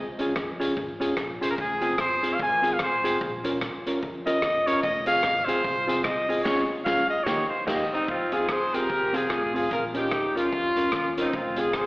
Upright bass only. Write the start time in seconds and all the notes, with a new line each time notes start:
Already playing: C#2
0.36 F2
0.77 G#1
1.17 A#1
1.42 C2
1.58 F1
1.99 G1
2.40 G#1
2.80 A1
3.21 A#1
3.62 C#2
4.02 F2
4.43 E1
4.84 F1
5.23 G#1
5.64 C2
6.04 C2
6.45 C#2
6.86 C#2
7.27 D#2
7.67 D#2
8.08 F2
8.49 C#2
8.90 C2
9.30 A1
9.71 A#1
10.12 C#2
10.52 F2
10.93 D#2
11.34 F1
11.74 G#1